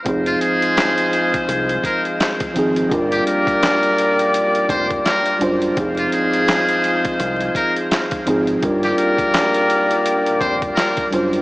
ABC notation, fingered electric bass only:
X:1
M:4/4
L:1/8
Q:"Swing 16ths" 1/4=84
K:Fdor
V:1 name="Fingered electric bass" clef=bass
F,,, z3 C,, z2 A,,, | G,,, z4 F,,, z _G,,, | F,,, z3 C,, z2 A,,, | G,,, z4 F,,, z _G,,, |]